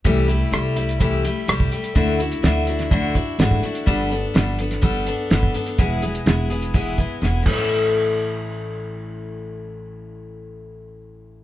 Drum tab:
CC |----------------|----------------|----------------|--------------x-|
HH |x-x-x-xxx-x-x-xx|x-xxx-xxx-x-x-xx|x-x-x-xxx-x-x-xx|x-xxx-xxx-x-----|
SD |----r-------r---|----o--o----o---|----o--o----o---|----o-------o---|
BD |o-------o----o--|o-------o-o--o--|o-------o----o--|o-------o-o---o-|

CC |----------------|----------------|
HH |----------------|----------------|
SD |----------------|----------------|
BD |----------------|----------------|